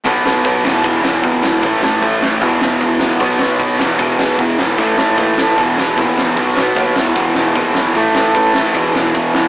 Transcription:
<<
  \new Staff \with { instrumentName = "Distorted electric guitar" } { \clef bass \time 4/4 \key e \lydian \tempo 4 = 152 <b, fis b>4. <e, b, e>2~ <e, b, e>8 | <a, e a>2 <e, b, e>2 | <b, fis b>4. <e, b, e>2~ <e, b, e>8 | <a, e a>2 <e, b, e>2 |
<b, fis b>4. <e, b, e>2~ <e, b, e>8 | <a, e a>2 <e, b, e>2 | }
  \new Staff \with { instrumentName = "Overdriven electric guitar" } { \clef bass \time 4/4 \key e \lydian <b, fis b>8 <b, fis b>8 <b, fis b>8 <e, b, e>8 <e, b, e>8 <e, b, e>8 <e, b, e>8 <e, b, e>8 | <a, e a>8 <a, e a>8 <a, e a>8 <a, e a>8 <e, b, e>8 <e, b, e>8 <e, b, e>8 <e, b, e>8 | <b, fis b>8 <b, fis b>8 <b, fis b>8 <e, b, e>8 <e, b, e>8 <e, b, e>8 <e, b, e>8 <e, b, e>8 | <a, e a>8 <a, e a>8 <a, e a>8 <a, e a>8 <e, b, e>8 <e, b, e>8 <e, b, e>8 <e, b, e>8 |
<b, fis b>8 <b, fis b>8 <b, fis b>8 <e, b, e>8 <e, b, e>8 <e, b, e>8 <e, b, e>8 <e, b, e>8 | <a, e a>8 <a, e a>8 <a, e a>8 <a, e a>8 <e, b, e>8 <e, b, e>8 <e, b, e>8 <e, b, e>8 | }
  \new Staff \with { instrumentName = "Overdriven electric guitar" } { \clef bass \time 4/4 \key e \lydian <b, fis b>8 <b, fis b>8 <b, fis b>8 <e, b, e>8 <e, b, e>8 <e, b, e>8 <e, b, e>8 <e, b, e>8 | <a, e a>8 <a, e a>8 <a, e a>8 <a, e a>8 <e, b, e>8 <e, b, e>8 <e, b, e>8 <e, b, e>8 | <b, fis b>8 <b, fis b>8 <b, fis b>8 <e, b, e>8 <e, b, e>8 <e, b, e>8 <e, b, e>8 <e, b, e>8 | <a, e a>8 <a, e a>8 <a, e a>8 <a, e a>8 <e, b, e>8 <e, b, e>8 <e, b, e>8 <e, b, e>8 |
<b, fis b>8 <b, fis b>8 <b, fis b>8 <e, b, e>8 <e, b, e>8 <e, b, e>8 <e, b, e>8 <e, b, e>8 | <a, e a>8 <a, e a>8 <a, e a>8 <a, e a>8 <e, b, e>8 <e, b, e>8 <e, b, e>8 <e, b, e>8 | }
  \new Staff \with { instrumentName = "Picked electric bass" } { \clef bass \time 4/4 \key e \lydian b,,8 b,,8 b,,8 e,,8 e,,8 e,,8 gis,,4 | a,,8 a,,8 a,,4 e,,8 e,,8 e,,4 | b,,8 b,,8 b,,8 e,,8 e,,8 e,,8 e,,4 | a,,8 a,,8 dis,4 e,,8 e,,8 ais,,4 |
b,,8 b,,8 dis,8 e,,8 e,,8 e,,8 ais,,4 | a,,8 a,,8 a,,4 e,,8 e,,8 e,,4 | }
  \new DrumStaff \with { instrumentName = "Drums" } \drummode { \time 4/4 <cymc bd>8 sn8 <cymc bd>8 sn8 <cymc bd>8 sn8 <cymc bd>8 sn8 | <cymc bd>8 sn8 <cymc bd>8 sn8 <cymc bd>8 sn8 <cymc bd>8 sn8 | <cymc bd>8 sn8 <cymc bd>8 sn8 <cymc bd>8 sn8 <cymc bd>8 sn8 | <cymc bd>8 sn8 <cymc bd>8 sn8 <cymc bd>8 sn8 <bd sn>8 sn8 |
<cymc bd>8 sn8 <cymc bd>8 sn8 <cymc bd>8 sn8 <cymc bd>8 sn8 | <cymc bd>8 sn8 <cymc bd>8 sn8 <cymc bd>8 sn8 <cymc bd>8 sn8 | }
>>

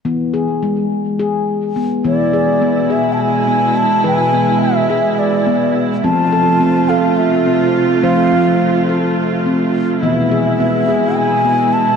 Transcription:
<<
  \new Staff \with { instrumentName = "Bansuri" } { \time 7/8 \tempo 4 = 105 r2. r8 | d''4. e''16. a''32 gis''4 a''8 | gis''4 e''4 d''4~ d''32 r16. | a''4. f''8 e''4 r8 |
f''4. r2 | e''2 gis''4 a''8 | }
  \new Staff \with { instrumentName = "Handpan" } { \time 7/8 b8 gis'8 gis4 gis'4 b8 | b8 gis'8 b8 gis'4 b4 | b'8 b4 gis'4 b4 | c'8 a'8 c'8 a'4 c'4 |
c''8 c'4 a'4 c'4 | b8 gis'8 b8 gis'4 b4 | }
  \new Staff \with { instrumentName = "Handpan" } { \clef bass \time 7/8 e2.~ e8 | e2.~ e8 | e2.~ e8 | f2.~ f8 |
f2.~ f8 | e2.~ e8 | }
  \new Staff \with { instrumentName = "String section" } { \clef bass \time 7/8 r2. r8 | <b, gis e'>2.~ <b, gis e'>8~ | <b, gis e'>2.~ <b, gis e'>8 | <c a f'>2.~ <c a f'>8~ |
<c a f'>2.~ <c a f'>8 | <b, gis e'>2.~ <b, gis e'>8 | }
>>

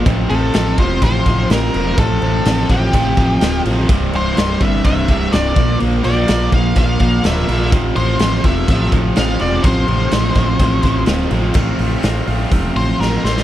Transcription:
<<
  \new Staff \with { instrumentName = "Lead electric guitar" } { \time 4/4 \key f \major \tempo 4 = 125 r8 a'4 c''8 c''4 bes'4 | a'4. g'2 r8 | r8 c''4 e''8 e''4 d''4 | r8 d''4 f''8 f''4 e''4 |
r8 c''4 e''4 r8 f''8 d''8 | c''2. r4 | r2 r8 c''8 bes'8 c''8 | }
  \new Staff \with { instrumentName = "Distorted electric guitar" } { \clef bass \time 4/4 \key f \major <f, c f>8 <f, c f>8 <f, c f>8 <f, c f>8 <f, c f>8 <f, c f>8 <f, c f>8 <f, c f>8 | <f, c f>8 <f, c f>8 <f, c f>8 <f, c f>8 <f, c f>8 <f, c f>8 <f, c f>8 <f, c f>8 | <c, g, c>8 <c, g, c>8 <c, g, c>8 <c, g, c>8 <c, g, c>8 <c, g, c>8 <c, g, c>8 <bes, f bes>8 | <bes, f bes>8 <bes, f bes>8 <bes, f bes>8 <bes, f bes>8 <bes, f bes>8 <bes, f bes>8 <bes, f bes>8 <bes, f bes>8 |
<f, c f>8 <f, c f>8 <f, c f>8 <f, c f>8 <f, c f>8 <f, c f>8 <f, c f>8 <f, c f>8 | <f, c f>8 <f, c f>8 <f, c f>8 <f, c f>8 <f, c f>8 <f, c f>8 <f, c f>8 <f, c f>8 | <f, c f a c' f'>8 <f a c' f'>8 <f a c' f'>8 <f a c' f'>8 <f, c f a c' f'>4 <f a c' f'>8 <f a c' f'>8 | }
  \new Staff \with { instrumentName = "Picked electric bass" } { \clef bass \time 4/4 \key f \major a,,8 a,,8 a,,8 e,,8 a,,8 a,,8 a,,8 e,,8 | a,,8 a,,8 a,,8 a,,8 a,,8 a,,8 d,,8 a,,8 | c,,8 c,,8 c,,8 g,,8 c,,8 c,,8 c,,8 bes,,8 | bes,,8 bes,,8 bes,,8 bes,,8 bes,,8 bes,,8 d,,8 bes,,8 |
a,,8 a,,8 a,,8 e,,8 a,,8 a,,8 a,,8 e,,8 | a,,8 a,,8 a,,8 a,,8 a,,8 a,,8 d,,8 a,,8 | a,,8 a,,8 a,,8 a,,8 e,,8 a,,8 a,,8 a,,8 | }
  \new DrumStaff \with { instrumentName = "Drums" } \drummode { \time 4/4 <cymc bd>8 cymc8 <cymc sn>8 <cymc bd>8 <cymc bd>8 <cymc bd>8 <cymc sn>8 cymc8 | <cymc bd>8 cymc8 <cymc sn>8 <cymc bd>8 <cymc bd>8 <cymc bd>8 <cymc sn>8 cymc8 | <cymc bd>8 cymc8 <cymc sn>8 <cymc bd>8 <cymc bd>8 <cymc bd>8 <cymc sn>8 <cymc bd>8 | cymc8 cymc8 <cymc sn>8 <cymc bd>8 <cymc bd>8 <cymc bd>8 <cymc sn>8 cymc8 |
<cymc bd>8 cymc8 <cymc sn>8 <cymc bd>8 <cymc bd>8 <cymc bd>8 <cymc sn>8 <cymc sn>8 | <cymc bd>8 cymc8 <cymc sn>8 <cymc bd>8 <cymc bd>8 <cymc bd>8 <cymc sn>8 cymc8 | <cymc bd>8 hho8 <hho sn>8 hho8 <hho bd>8 hho8 sn8 sn16 sn16 | }
>>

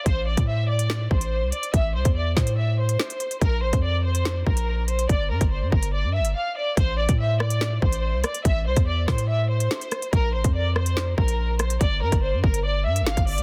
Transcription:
<<
  \new Staff \with { instrumentName = "Violin section" } { \time 4/4 \key a \phrygian \tempo 4 = 143 c''8 d''8 e''8 d''4 c''4 d''8 | e''8 c''8 d''8 c''8 e''8 c''4. | bes'8 c''8 d''8 c''4 bes'4 c''8 | d''8 bes'8 c''8 bes'8 d''8 e''8 f''8 d''8 |
c''8 d''8 e''8 d''4 c''4 d''8 | e''8 c''8 d''8 c''8 e''8 c''4. | bes'8 c''8 d''8 c''4 bes'4 c''8 | d''8 bes'8 c''8 bes'8 d''8 e''8 f''8 d''8 | }
  \new Staff \with { instrumentName = "808-style bass" } { \clef bass \time 4/4 \key a \phrygian a,,8. a,4.~ a,16 a,,8. c,16 r8 | a,,8 c,16 e,8. a,4. r4 | bes,,8 a,,16 f,4.~ f,16 bes,,4. | g,,8 g,16 g,,8 g,16 g,,8. g,16. g,,16. r4 |
a,,8. a,4.~ a,16 a,,8. c,16 r8 | a,,8 c,16 e,8. a,4. r4 | bes,,8 a,,16 f,4.~ f,16 bes,,4. | g,,8 g,16 g,,8 g,16 g,,4 g,16. g,,16. g,,8 g,16 | }
  \new DrumStaff \with { instrumentName = "Drums" } \drummode { \time 4/4 <hh bd>8. <hh bd>16 r8. hh16 sn8 bd16 hh16 r8 hh16 hh16 | <hh bd>8. <hh bd>16 r8 <bd sn>16 hh16 r8. hh16 sn16 hh16 hh16 hh16 | <hh bd>8. <hh bd>16 r8. hh16 sn8 bd16 hh16 r8 hh16 hh16 | <hh bd>8. <hh bd>16 r8 bd16 hh16 r8. hh16 r4 |
<hh bd>8. <hh bd>16 r8 ss16 hh16 sn8 bd16 hh16 r8 <hh ss>16 hh16 | <hh bd>8. <hh bd>16 r8 <bd ss sn>16 hh16 r8. hh16 sn16 hh16 <hh ss>16 hh16 | <hh bd>8. <hh bd>16 r8 ss16 hh16 sn8 bd16 hh16 r8 <hh ss>16 hh16 | <hh bd>8. <hh bd>16 r8 bd16 hh16 r8. hh16 sn16 <hh bd>16 hho16 hh16 | }
>>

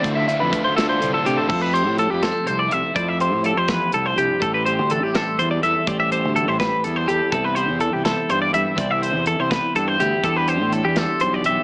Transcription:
<<
  \new Staff \with { instrumentName = "Clean electric guitar" } { \time 6/8 \key a \minor \tempo 4. = 82 d''16 e''16 e''16 b'8 c''16 a'16 c''8 a'16 g'16 a'16 | a'16 b'16 c''8 a'16 g'16 a'8 c''16 d''16 e''8 | d''16 e''16 c''8 a'16 c''16 b'8 a'16 c''16 g'8 | a'16 b'16 c''8 a'16 g'16 a'8 c''16 d''16 e''8 |
d''16 e''16 c''8 a'16 c''16 b'8 a'16 c''16 g'8 | a'16 b'16 c''8 a'16 g'16 a'8 c''16 d''16 e''8 | d''16 e''16 c''8 a'16 c''16 b'8 a'16 c''16 g'8 | a'16 b'16 c''8 a'16 g'16 a'8 c''16 d''16 e''8 | }
  \new Staff \with { instrumentName = "Overdriven electric guitar" } { \time 6/8 \key a \minor <d a d' f'>8 <d a d' f'>8 <d a d' f'>8 <d a d' f'>8 <d a d' f'>8 <d a d' f'>8 | r2. | r2. | r2. |
r2. | r2. | r2. | r2. | }
  \new Staff \with { instrumentName = "Clean electric guitar" } { \time 6/8 \key a \minor << { <c' e'>8 c'8 e'8 f'4 c'8 | <a c' e'>8 g'4 g16 a8. e'8 | <a c' e'>8 g'2~ g'8 | <g c' g'>8 g'4 g4 a'8 |
<g c' g'>8 g'4 g4 a'8 | <b c' e'>8 e'4 b4 e'8 | <b c' e'>8 e'4 b4 e'8 | <g d' g'>8 g'4 g4 g'8 | } \\ { d4 a4 a,4 | f,4 f4 c4 | f,4 f8 e,8 f,8 g,8 | a,4 e4 e,4 |
a,4 e4 e,4 | c4 e4 g,4 | c4 e4 g,4 | e,4 e4 b,4 | } >> }
  \new Staff \with { instrumentName = "Fingered electric bass" } { \clef bass \time 6/8 \key a \minor d,8 r16 f,16 r16 d,8. c,16 r16 c16 r16 | f,8. a,8 f,8 r16 c,8 c,16 r16 | f,8. a,8 f,8 r16 c,8 c,16 r16 | a,,8. d,8 a,,8 r16 e,8 e,16 r16 |
a,,8. d,8 a,,8 r16 e,8 e,16 r16 | c,8. e,8 c,8 r16 g,8 g,16 r16 | c,8. e,8 c,8 r16 g,8 d,16 r16 | e,8. a,8 e,8 r16 b,,8 b,,16 r16 | }
  \new DrumStaff \with { instrumentName = "Drums" } \drummode { \time 6/8 <hh bd>8 hh8 <hh bd>8 <hh sn>8 hh8 hh8 | <cymc bd>8 hh8 hh8 <hh sn>8 hh8 hh8 | <hh bd>8 hh8 hh8 <hh bd sn>8 hh8 hh8 | <hh bd>8 hh8 hh8 <hh sn>8 hh8 hh8 |
<hh bd>8 hh8 hh8 <hh bd sn>8 hh8 hh8 | <hh bd>8 hh8 hh8 <hh sn>8 hh8 hh8 | <hh bd>8 hh8 hh8 <hh bd sn>8 hh8 hh8 | <hh bd>8 hh8 hh8 <hh sn>8 hh8 hh8 | }
>>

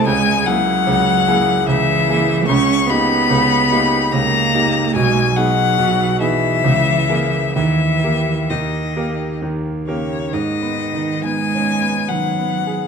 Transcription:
<<
  \new Staff \with { instrumentName = "Violin" } { \time 3/4 \key gis \minor \tempo 4 = 72 gis''8 fis''4. e''4 | cis'''8 b''4. ais''4 | gis''8 fis''4 e''4. | e''4 dis''4 r8 cis''8 |
dis''4 gis''4 fis''4 | }
  \new Staff \with { instrumentName = "Grand piano" } { \time 3/4 \key gis \minor <cis, cis>8 <ais e' gis'>8 <cis, cis>8 <ais e' gis'>8 <cis, cis>8 <ais e' gis'>8 | <cis, cis>8 <ais dis' g'>8 <cis, cis>8 <ais dis' g'>8 <cis, cis>8 <ais dis' g'>8 | <b,, b,>8 <b dis' gis'>8 <b,, b,>8 <b dis' gis'>8 <cis, cis>8 <ais gis' ais'>8 | <dis, dis>8 <ais g' ais'>8 <dis, dis>8 <ais g' ais'>8 <dis, dis>8 <ais g' ais'>8 |
\tuplet 3/2 { gis,8 b8 dis8 b8 cis'8 b8 dis8 b8 gis'8 } | }
  \new Staff \with { instrumentName = "Cello" } { \clef bass \time 3/4 \key gis \minor gis8 fis4. e4 | cis'8 b4. ais4 | gis8 fis4 e4. | e4 dis4 r8 cis8 |
dis4 gis4 fis4 | }
>>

